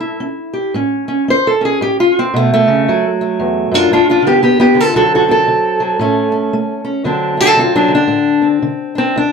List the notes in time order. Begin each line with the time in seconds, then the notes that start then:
Already playing: A2 A4
0.00 E4
0.20 C#4
0.53 G4
0.74 A2 C#4
1.08 C#4
1.28 C#4 C5
1.47 A4
1.61 C#4
1.65 G#4
1.81 A2 G4
2.00 F4
2.19 C4
2.34 B2 A3
2.54 A3
2.67 C#3
2.88 D2 F#3
3.21 A3
3.40 E2
3.71 F#2 D4 F4
3.91 G2 D4 F4
4.10 D4 F4
4.22 D3
4.27 B3 G4
4.42 D3 B3 G4
4.60 B3 G4
4.75 D3
4.80 F4 A4
4.94 D2 D3 F#3 C4 F#4 A4
5.15 F#4 A4
5.29 C4 A4
5.48 D3
5.80 F#3
5.99 A2 A3 C#4
6.32 C#4
6.53 A3
6.85 C#4
7.04 D2 D3 F#3 C4 D4
7.37 A3 F#4 A4
7.47 C4
7.57 D3
7.61 F4
7.75 F#3 D4
7.88 D3
7.95 D4
8.08 A2
8.42 C4
8.62 D3
8.95 C4 D4
9.16 D2 D4